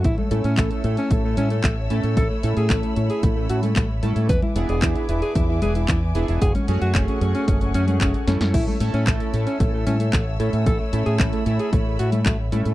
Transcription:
<<
  \new Staff \with { instrumentName = "String section" } { \time 4/4 \key a \major \tempo 4 = 113 << { <cis'' e'' e'''>1~ | <cis'' e'' e'''>1 | <b' e'' d'''>1 | <a fis'' cis'''>1 |
<cis'' e'' e'''>1~ | <cis'' e'' e'''>1 | } \\ { a''1 | b''1 | gis''1~ | gis''1 |
a''1 | b''1 | } >> }
  \new Staff \with { instrumentName = "Analog polysynth" } { \time 4/4 \key a \major r8 <a cis' e' a'>4 <a cis' e' a'>4 <a cis' e' a'>8 r8 <a cis' e' a'>8 | r8 <a cis' e' a'>4 <a cis' e' a'>4 <a cis' e' a'>8 r8 <a cis' e' a'>8 | r8 <b d' e' gis'>4 <b d' e' gis'>4 <b d' e' gis'>8 r8 <b d' e' gis'>8 | r8 <a cis' fis' gis'>4 <a cis' fis' gis'>4 <a cis' fis' gis'>4 <a cis' e' a'>8~ |
<a cis' e' a'>8 <a cis' e' a'>4 <a cis' e' a'>4 <a cis' e' a'>8 r8 <a cis' e' a'>8 | r8 <a cis' e' a'>4 <a cis' e' a'>4 <a cis' e' a'>8 r8 <a cis' e' a'>8 | }
  \new Staff \with { instrumentName = "Alto saxophone" } { \time 4/4 \key a \major e'16 a16 a16 cis'16 a16 a16 a16 cis'16 a16 a16 cis'16 a16 a16 r16 a16 a16 | a'16 a16 a16 gis'16 a16 a16 a16 gis'16 a16 a16 fis'16 a16 a16 r16 a16 a16 | b'16 e'16 e'16 gis'16 e'16 e'16 e'16 gis'16 e'16 e'16 gis'16 e'16 e'16 r16 e'16 e'16 | gis'16 cis'16 cis'16 fis'16 cis'16 cis'16 cis'16 cis'16 cis'16 cis'16 cis'16 cis'16 cis'16 r16 cis'16 cis'16 |
e'16 a16 a16 cis'16 a16 a16 a16 cis'16 a16 a16 cis'16 a16 a16 r16 a16 a16 | a'16 a16 a16 gis'16 a16 a16 a16 gis'16 a16 a16 fis'16 a16 a16 r16 a16 a16 | }
  \new Staff \with { instrumentName = "Fingered electric bass" } { \clef bass \time 4/4 \key a \major a,,16 r16 a,16 a,16 a,,16 r16 a,16 r16 a,,8 a,8 a,,8 a,16 a,16 | a,,16 r16 a,16 a,16 a,,16 r16 a,16 r16 a,,8 a,8 a,,8 a,16 a,16 | e,16 r16 e,,16 e,,16 e,16 r16 e,,16 r16 e,8 e,,8 e,8 e,,16 e,,16 | fis,,16 r16 fis,16 fis,16 fis,,16 r16 fis,16 r16 fis,,8 fis,8 fis,,16 r16 fis,16 fis,16 |
a,,16 r16 a,16 a,16 a,,16 r16 a,16 r16 a,,8 a,8 a,,8 a,16 a,16 | a,,16 r16 a,16 a,16 a,,16 r16 a,16 r16 a,,8 a,8 a,,8 a,16 a,16 | }
  \new DrumStaff \with { instrumentName = "Drums" } \drummode { \time 4/4 <hh bd>16 cgho16 hh16 hh16 <hc hh bd>16 hh16 hh16 hh16 <hh bd>8 <cgho hh>16 hh16 <hc hh bd>8 hh16 hh16 | <hh bd>8 hh16 hh16 <hc hh bd>16 hh16 hh16 hh16 <hh bd>8 hh16 <cgho hh>16 <hc hh bd>8 <cgho hh>16 hh16 | <hh bd>16 cgho16 hh16 hh16 <hc hh bd>16 hh16 hh16 hh16 <hh bd>8 <cgho hh>16 hh16 <hc hh bd>8 hh16 hh16 | <hh bd>16 <cgho hh>16 hh16 hh16 <hc hh bd>16 hh16 hh16 hh16 <hh bd>16 hh16 hh16 <cgho hh>16 <hc hh bd>16 hh16 <cgho hh sn>16 <hh sn>16 |
<cymc hh bd>16 cgho16 hh16 hh16 <hc hh bd>16 hh16 hh16 hh16 <hh bd>8 <cgho hh>16 hh16 <hc hh bd>8 hh16 hh16 | <hh bd>8 hh16 hh16 <hc hh bd>16 hh16 hh16 hh16 <hh bd>8 hh16 <cgho hh>16 <hc hh bd>8 <cgho hh>16 hh16 | }
>>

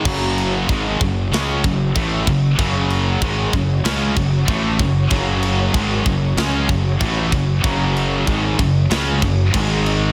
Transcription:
<<
  \new Staff \with { instrumentName = "String section" } { \time 4/4 \key fis \minor \tempo 4 = 95 <cis fis fis' cis''>1~ | <cis fis fis' cis''>1~ | <cis fis fis' cis''>1~ | <cis fis fis' cis''>2. <dis gis gis' dis''>4 | }
  \new Staff \with { instrumentName = "Distorted electric guitar" } { \clef bass \time 4/4 \key fis \minor <fis, cis fis>4 <gis, dis gis>8 <fis, cis>8 <cis gis cis'>8 <fis, cis>8 <a, e a>8 <fis, cis>8 | <fis, cis fis>4 <gis, dis gis>8 <fis, cis>8 <cis gis cis'>8 <fis, cis>8 <a, e a>8 <fis, cis>8 | <fis, cis fis>4 <gis, dis gis>8 <fis, cis>8 <cis gis cis'>8 <fis, cis>8 <a, e a>8 <fis, cis>8 | <fis, cis fis>4 <gis, dis gis>8 <fis, cis>8 <cis gis cis'>8 <fis, cis>8 <gis, dis gis>4 | }
  \new Staff \with { instrumentName = "Distorted electric guitar" } { \clef bass \time 4/4 \key fis \minor <fis, cis fis>4 <gis, dis gis>8 <fis, cis>8 <cis gis cis'>8 <fis, cis>8 <a, e a>8 <fis, cis>8 | <fis, cis fis>4 <gis, dis gis>8 <fis, cis>8 <cis gis cis'>8 <fis, cis>8 <a, e a>8 <fis, cis>8 | <fis, cis fis>4 <gis, dis gis>8 <fis, cis>8 <cis gis cis'>8 <fis, cis>8 <a, e a>8 <fis, cis>8 | <fis, cis fis>4 <gis, dis gis>8 <fis, cis>8 <cis gis cis'>8 <fis, cis>8 <gis, dis gis>4 | }
  \new Staff \with { instrumentName = "Overdriven electric guitar" } { \clef bass \time 4/4 \key fis \minor <fis, cis fis>4 <gis, dis gis>8 <fis, cis>8 <cis gis cis'>8 <fis, cis>8 <a, e a>8 <fis, cis>8 | <fis, cis fis>4 <gis, dis gis>8 <fis, cis>8 <cis gis cis'>8 <fis, cis>8 <a, e a>8 <fis, cis>8 | <fis, cis fis>4 <gis, dis gis>8 <fis, cis>8 <cis gis cis'>8 <fis, cis>8 <a, e a>8 <fis, cis>8 | <fis, cis fis>4 <gis, dis gis>8 <fis, cis>8 <cis gis cis'>8 <fis, cis>8 <gis, dis gis>4 | }
  \new Staff \with { instrumentName = "Fingered electric bass" } { \clef bass \time 4/4 \key fis \minor fis,,4 gis,,8 fis,,8 cis,8 fis,,8 a,,8 fis,,8 | fis,,4 gis,,8 r8 cis,8 fis,,8 a,,8 fis,,8 | fis,,4 gis,,8 r8 cis,8 fis,,8 a,,8 fis,,8 | fis,,4 gis,,8 fis,,8 cis,8 fis,,8 gis,,4 | }
  \new DrumStaff \with { instrumentName = "Drums" } \drummode { \time 4/4 <cymc bd>8 cymc8 <cymc bd>8 <cymc bd>8 <cymc sn>8 <cymc bd>8 <cymc bd>8 <cymc bd>8 | <cymc bd>8 cymc8 <cymc bd>8 <cymc bd>8 <cymc sn>8 <cymc bd>8 <cymc bd>8 <cymc bd>8 | <cymc bd>8 cymc8 <cymc bd>8 <cymc bd>8 <cymc sn>8 <cymc bd>8 <cymc bd>8 <cymc bd>8 | <cymc bd>8 cymc8 <cymc bd>8 <cymc bd>8 <cymc sn>8 <cymc bd>8 <cymc bd>8 cymc8 | }
>>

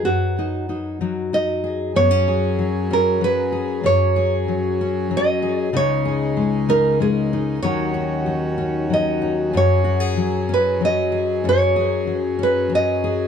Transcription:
<<
  \new Staff \with { instrumentName = "Nylon-string guitar" } { \time 3/4 \key dis \minor \tempo 4 = 95 fis'2 dis''4 | cis''4. ais'8 b'4 | cis''4. r8 dis''4 | cis''4. ais'8 gis'4 |
cis''4. r8 dis''4 | cis''4. b'8 dis''4 | cis''4. b'8 dis''4 | }
  \new Staff \with { instrumentName = "Steel-string acoustic guitar" } { \time 3/4 \key dis \minor << { r8 dis'8 dis'8 dis'8 dis'8 gis'8 | b16 cis'16 gis'4 cis'4 gis'8 | cis'8 gis'4 cis'4 gis'8 | dis'8 gis'4 dis'4 dis'8 |
<fis cis' dis' fis'>8 dis'4 cis'4 dis'8 | cis'8 fis'16 gis'8. cis'4 gis'8 | cis'8 gis'4 cis'4 gis'8 | } \\ { <fis, fis>4. fis4. | fis,4 fis4 fis4 | fis,4 fis4 fis4 | cis4 gis4 gis4 |
dis4 fis4 fis4 | fis,4 fis4 fis4 | fis,4 fis4 fis4 | } >> }
  \new Staff \with { instrumentName = "Harmonium" } { \time 3/4 \key dis \minor << { r2. | gis'2.~ | gis'2.~ | gis'2. |
fis'2. | gis'2.~ | gis'2. | } \\ { r2. | cis'2.~ | cis'2. | dis'2. |
cis'2.~ | cis'2.~ | cis'2. | } >> }
  \new Staff \with { instrumentName = "Harmonium" } { \clef bass \time 3/4 \key dis \minor r2. | <fis, fis>2.~ | <fis, fis>2. | <cis, cis>2. |
<dis, dis>2. | <fis, fis>2.~ | <fis, fis>2. | }
>>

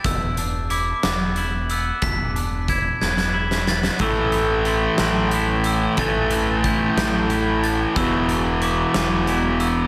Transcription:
<<
  \new Staff \with { instrumentName = "Glockenspiel" } { \time 6/8 \key a \minor \tempo 4. = 61 e'''4 d'''8 d'''4 e'''8 | b'''4 gis'''8 gis'''4 a'''8 | e'''4 c'''8 c'''4 e'''8 | a'''4 g'''8 g'''4 a'''8 |
e'''4 d'''8 d'''4 e'''8 | }
  \new Staff \with { instrumentName = "Clean electric guitar" } { \time 6/8 \key a \minor e,8 d'8 e'8 b8 e'8 b8 | e,8 d'8 e'8 b8 e'8 b8 | a,8 c'8 e'8 g'8 e'8 g'8 | a,8 c'8 e'8 g'8 e'8 g'8 |
e,8 d'8 e'8 b8 e'8 b8 | }
  \new Staff \with { instrumentName = "Distorted electric guitar" } { \clef bass \time 6/8 \key a \minor r2. | r2. | <a, e a>2. | <a, e a>2. |
<e, b, e>2. | }
  \new Staff \with { instrumentName = "Fingered electric bass" } { \clef bass \time 6/8 \key a \minor e,,4. e,,4. | e,,4. e,,4. | a,,4. a,,4. | a,,4. a,,4. |
e,,4. e,,4. | }
  \new DrumStaff \with { instrumentName = "Drums" } \drummode { \time 6/8 <hh bd>8 hh8 hh8 <hh sn>8 hh8 hh8 | <hh bd>8 hh8 <hh bd>8 sn16 sn8 sn16 sn16 sn16 | <hh bd>8 hh8 hh8 <hh sn>8 hh8 hh8 | <hh bd>8 hh8 <hh bd>8 <hh sn>8 hh8 hh8 |
<hh bd>8 hh8 hh8 <hh sn>8 hh8 hh8 | }
>>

